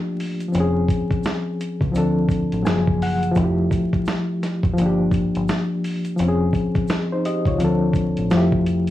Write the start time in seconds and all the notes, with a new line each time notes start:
Already playing: F3 A3 A#3 D4 F4 G4
0.20 open hi-hat, shaker
0.40 closed hi-hat, shaker
0.48 F3
0.52 F1 C4 C#4, closed hi-hat, shaker
0.60 G#4
0.88 kick, closed hi-hat, shaker
1.11 kick, closed hi-hat
1.23 snare, closed hi-hat, shaker
1.61 closed hi-hat, shaker
1.81 C#2, kick, closed hi-hat
1.92 D2 F3 C4 D4, shaker
1.96 A4, closed hi-hat
2.29 kick, closed hi-hat, shaker
2.52 A1, closed hi-hat
2.63 F#1 F3 F#3 A#3 G#5, shaker
2.67 G#4, snare, closed hi-hat
2.88 kick
3.02 F#5, open hi-hat, shaker
3.23 closed hi-hat, shaker
3.32 F3 A3, shaker
3.36 F1 E4, kick, closed hi-hat
3.44 G4
3.71 kick, closed hi-hat, shaker
3.93 kick, closed hi-hat
4.05 snare, closed hi-hat, shaker
4.43 snare, closed hi-hat, shaker
4.63 E1, kick, closed hi-hat
4.73 F3 A#3, shaker
4.78 G1 D4, closed hi-hat
4.86 G4
5.11 kick, closed hi-hat, shaker
5.35 G1, closed hi-hat
5.48 snare, closed hi-hat, shaker
5.84 open hi-hat, shaker
6.05 closed hi-hat, shaker
6.16 F1 F3, closed hi-hat, shaker
6.20 C4
6.24 C#4 G#4
6.53 kick, closed hi-hat, shaker
6.75 kick, closed hi-hat
6.88 snare, closed hi-hat, shaker
7.12 D#4 C5
7.25 G4 D#5, closed hi-hat, shaker
7.45 C#2 F4 C#5, kick, closed hi-hat
7.58 D2 F3 C4 D4, closed hi-hat, shaker
7.64 A4
7.93 kick, closed hi-hat, shaker
8.17 A1, closed hi-hat
8.30 F1 F3 A3, snare, closed hi-hat, shaker
8.35 E4 G4
8.52 kick
8.66 closed hi-hat, shaker
8.87 closed hi-hat